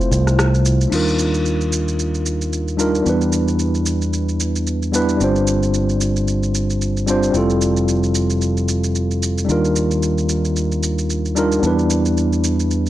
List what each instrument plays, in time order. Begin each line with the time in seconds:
Already playing: tine electric piano A3 C4 E4 F4 C5
0.01 shaker
0.11 fingered electric bass C2, shaker
0.27 cross-stick, shaker
0.39 cross-stick, shaker
0.54 shaker
0.66 shaker
0.81 shaker
0.88 fingered electric bass D#2, tine electric piano G3 D4 D#4
0.92 tine electric piano F4 A#4, crash, shaker
1.08 shaker
1.19 shaker
1.34 shaker
1.46 shaker
1.61 shaker
1.73 shaker
1.88 shaker
1.99 shaker
2.15 shaker
2.26 shaker
2.42 shaker
2.53 shaker
2.68 shaker
2.77 tine electric piano G3 D4 D#4 F4 A#4, shaker
2.95 shaker
3.02 fingered electric bass E2, tine electric piano G3 B3 D4, shaker
3.08 tine electric piano E4 B4
3.21 shaker
3.32 shaker
3.48 shaker
3.59 shaker
3.75 shaker
3.86 shaker
4.02 shaker
4.13 shaker
4.29 shaker
4.40 shaker
4.56 shaker
4.67 shaker
4.82 shaker
4.92 tine electric piano G3 B3 D4 E4 B4, shaker
5.09 shaker
5.17 fingered electric bass G1, tine electric piano G3 C4 D4, shaker
5.22 tine electric piano F4 C5
5.36 shaker
5.47 shaker
5.63 shaker
5.74 shaker
5.89 shaker
6.01 shaker
6.16 shaker
6.28 shaker
6.43 shaker
6.55 shaker
6.70 shaker
6.82 shaker
6.97 shaker
7.07 tine electric piano G3 C4 D4 F4 C5, shaker
7.23 shaker
7.31 fingered electric bass F1, tine electric piano G3 C4 E4, shaker
7.36 tine electric piano F4 A4
7.50 shaker
7.62 shaker
7.77 shaker
7.88 shaker
8.03 shaker
8.15 shaker
8.30 shaker
8.42 shaker
8.57 shaker
8.68 shaker
8.84 shaker
8.95 shaker
9.11 shaker
9.23 shaker
9.38 shaker
9.45 tine electric piano G3 D4 D#4
9.49 fingered electric bass D#2, tine electric piano F4 A#4, shaker
9.65 shaker
9.76 shaker
9.91 shaker
10.03 shaker
10.18 shaker
10.29 shaker
10.45 shaker
10.56 shaker
10.72 shaker
10.83 shaker
10.99 shaker
11.10 shaker
11.25 shaker
11.35 tine electric piano G3 D4 D#4 F4 A#4, shaker
11.52 shaker
11.59 fingered electric bass E2, tine electric piano G3 B3 D4
11.63 tine electric piano E4 B4, shaker
11.79 shaker
11.90 shaker
12.06 shaker
12.17 shaker
12.33 shaker
12.44 shaker
12.60 shaker
12.71 shaker
12.86 shaker